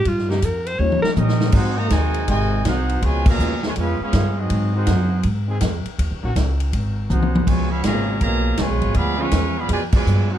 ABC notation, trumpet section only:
X:1
M:4/4
L:1/8
Q:"Swing" 1/4=162
K:Dblyd
V:1 name="Trumpet section"
z6 [DGBe]2 | [EAc_g] [_Gceb] [Gcea]2 [Gcea]2 [EAcg]2 | [F_cda] [Adfb]2 [Fcda] [DAcf] [DAcf]2 [=C_GAe]- | [C_GAe] [EAc_g]3 z4 |
z6 [EAc_g]2 | [F_cda] [Adf_c'] [Adfb]2 [Adfb]2 [Fcda]2 | [A=df=b] [=Bfa_d']2 [A=dfb] [FBda] [FBda]2 [EAc_g] |]